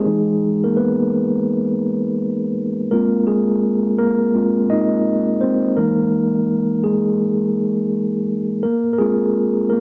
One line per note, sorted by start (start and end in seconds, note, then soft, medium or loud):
0.00 0.66 G#4 medium
0.06 0.57 E3 medium
0.06 0.57 G#3 medium
0.06 0.57 D#4 medium
0.64 0.77 A#3 medium
0.64 0.78 A#4 medium
0.77 2.53 B3 medium
0.77 2.52 B4 medium
2.91 3.28 G#3 medium
2.91 3.25 A#3 medium
2.91 4.34 C4 soft
2.91 4.34 F4 medium
2.91 3.28 A#4 medium
3.27 3.95 G#3 medium
3.27 4.01 G#4 medium
3.98 4.67 A#3 medium
3.98 4.72 A#4 loud
4.35 4.67 G#3 medium
4.35 4.67 C4 medium
4.35 4.67 F4 medium
4.70 5.38 D#4 medium
4.70 5.44 D#5 medium
5.41 5.76 C4 medium
5.41 5.78 C5 medium
5.77 8.59 E3 medium
5.77 6.85 G#3 medium
5.77 6.81 A#3 medium
5.77 8.60 D#4 medium
5.77 6.80 A#4 loud
6.84 8.24 G#3 medium
6.84 8.23 G#4 medium
8.63 8.92 A#3 medium
8.63 8.92 A#4 medium
8.93 8.98 A#4 medium
8.98 9.67 G#3 medium
8.98 9.80 C4 soft
8.98 9.80 F4 medium
8.98 9.72 G#4 medium
9.70 9.80 A#3 medium
9.70 9.80 A#4 medium